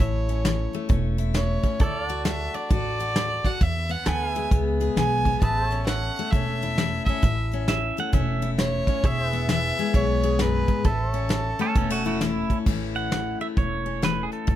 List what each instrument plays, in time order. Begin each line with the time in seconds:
Already playing: steel-string acoustic guitar A3 E4, pedal steel guitar A4 C#5 E5
0.00 upright bass A1, steel-string acoustic guitar A2, fiddle C#5, kick, closed hi-hat
0.28 steel-string acoustic guitar C#4, closed hi-hat
0.45 steel-string acoustic guitar E3, snare, closed hi-hat
0.73 steel-string acoustic guitar A3, closed hi-hat
0.89 upright bass E1, steel-string acoustic guitar E2 C#4, kick, closed hi-hat
1.18 steel-string acoustic guitar E4, closed hi-hat
1.34 steel-string acoustic guitar E3, fiddle C#5, snare, closed hi-hat
1.63 steel-string acoustic guitar C#4, kick, closed hi-hat
1.80 upright bass D2, steel-string acoustic guitar D3, pedal steel guitar A4 C#5 E5, fiddle D5, kick, closed hi-hat
2.03 pedal steel guitar D5
2.08 steel-string acoustic guitar F#4, pedal steel guitar F#5, closed hi-hat
2.25 steel-string acoustic guitar A3, fiddle E5, snare, closed hi-hat
2.54 steel-string acoustic guitar D4, fiddle D5, closed hi-hat
2.70 upright bass A1, steel-string acoustic guitar A2 F#4, fiddle D5, kick, closed hi-hat
2.99 steel-string acoustic guitar F#4, closed hi-hat
3.16 steel-string acoustic guitar A3, snare, closed hi-hat
3.44 steel-string acoustic guitar F#4, fiddle F#5, kick, closed hi-hat
3.61 steel-string acoustic guitar E2, upright bass E2, fiddle E5, kick, closed hi-hat
3.89 steel-string acoustic guitar B3, fiddle F#5, closed hi-hat
4.06 upright bass D2, steel-string acoustic guitar E3, pedal steel guitar A4 B4 F#5, fiddle G#5, snare, closed hi-hat
4.26 pedal steel guitar G#4
4.33 steel-string acoustic guitar G#3, pedal steel guitar E5, closed hi-hat
4.51 upright bass C#2, steel-string acoustic guitar B2 B3, kick, closed hi-hat
4.80 steel-string acoustic guitar G#4, closed hi-hat
4.96 upright bass B1, steel-string acoustic guitar E3, fiddle G#5, snare, closed hi-hat
5.25 steel-string acoustic guitar B3, kick, closed hi-hat
5.41 upright bass A1, pedal steel guitar G#4 B4 E5, fiddle A5, kick, closed hi-hat
5.63 pedal steel guitar A4
5.69 steel-string acoustic guitar C#4, pedal steel guitar C#5, closed hi-hat
5.87 steel-string acoustic guitar E3, fiddle F#5, snare, closed hi-hat
6.16 steel-string acoustic guitar A3, closed hi-hat
6.31 upright bass E1, steel-string acoustic guitar E2, fiddle E5, kick, closed hi-hat
6.35 steel-string acoustic guitar C#4
6.62 steel-string acoustic guitar E4, closed hi-hat
6.78 steel-string acoustic guitar E3, snare, closed hi-hat
7.05 steel-string acoustic guitar C#4, fiddle E5, kick, closed hi-hat
7.22 upright bass A1, steel-string acoustic guitar A2, kick, closed hi-hat
7.51 steel-string acoustic guitar C#4, closed hi-hat
7.68 steel-string acoustic guitar E3, pedal steel guitar E5, snare, closed hi-hat
7.97 steel-string acoustic guitar A3, pedal steel guitar F#5, closed hi-hat
8.13 upright bass E1, steel-string acoustic guitar E2 C#4, pedal steel guitar E5, kick, closed hi-hat
8.42 steel-string acoustic guitar E4, closed hi-hat
8.58 steel-string acoustic guitar E3, fiddle C#5, snare, closed hi-hat
8.87 steel-string acoustic guitar C#4, kick, closed hi-hat
9.04 upright bass E1, steel-string acoustic guitar E2, pedal steel guitar G#4 C#5 E5, fiddle E5, kick, closed hi-hat
9.30 steel-string acoustic guitar B3, pedal steel guitar B4, closed hi-hat
9.49 steel-string acoustic guitar E3, fiddle E5, snare, closed hi-hat
9.78 steel-string acoustic guitar G#3, closed hi-hat
9.94 upright bass B1, steel-string acoustic guitar B2 B3, fiddle C#5, kick, closed hi-hat
10.23 steel-string acoustic guitar G#4, closed hi-hat
10.39 steel-string acoustic guitar F#2, fiddle B4, snare, closed hi-hat
10.68 steel-string acoustic guitar G#2, kick, closed hi-hat
10.85 upright bass A1, steel-string acoustic guitar A2, pedal steel guitar A4 B4 E5, fiddle A4, kick, closed hi-hat
11.11 steel-string acoustic guitar C#4, pedal steel guitar C#5, closed hi-hat
11.29 steel-string acoustic guitar E3, snare, closed hi-hat
11.59 steel-string acoustic guitar A3, pedal steel guitar C#4 A4, closed hi-hat
11.75 upright bass E1, steel-string acoustic guitar E2 B3, pedal steel guitar C#4 A4, kick, closed hi-hat
11.90 pedal steel guitar A3 F#4, steel-string acoustic guitar C#4
12.04 pedal steel guitar A3 F#4, steel-string acoustic guitar E4, closed hi-hat
12.21 steel-string acoustic guitar E3, pedal steel guitar E4, snare, closed hi-hat
12.50 steel-string acoustic guitar C#4, kick, closed hi-hat
12.66 upright bass A1, steel-string acoustic guitar A2 E3 A3 C#4 E4, kick, crash
12.95 pedal steel guitar F#5, closed hi-hat
13.12 steel-string acoustic guitar E3, snare, closed hi-hat
13.41 steel-string acoustic guitar A3, pedal steel guitar E5
13.57 upright bass E1, steel-string acoustic guitar E2, pedal steel guitar C#5, kick, closed hi-hat
13.86 steel-string acoustic guitar C#4
14.02 steel-string acoustic guitar E3 A3, pedal steel guitar B4, snare, closed hi-hat
14.23 pedal steel guitar G#4
14.32 pedal steel guitar A4, closed hi-hat
14.47 upright bass A1, steel-string acoustic guitar A2, kick, closed hi-hat